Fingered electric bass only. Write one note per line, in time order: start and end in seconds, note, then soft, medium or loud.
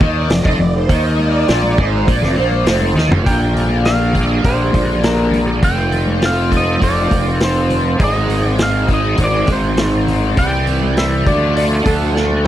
0.01 0.28 D#2 medium
0.30 0.44 F1 medium
0.45 0.58 F1 medium
0.59 0.86 F1 medium
0.89 1.44 D#2 loud
1.49 1.76 A#1 loud
1.79 2.05 G#1 medium
2.08 2.21 A#1 loud
2.22 2.36 F1 loud
2.38 2.65 A#1 medium
2.66 2.93 F1 medium
2.95 3.08 D#2 loud
3.09 3.23 F1 medium
3.26 4.40 A#1 medium
4.44 4.72 A#1 medium
4.74 5.59 A#1 medium
5.63 6.78 F1 medium
6.82 7.10 F1 medium
7.11 7.96 F1 medium
8.00 9.15 G#1 medium
9.18 9.46 G#1 medium
9.48 10.33 G#1 medium
10.37 11.22 C2 medium
11.26 11.82 D2 medium
11.86 12.47 D2 medium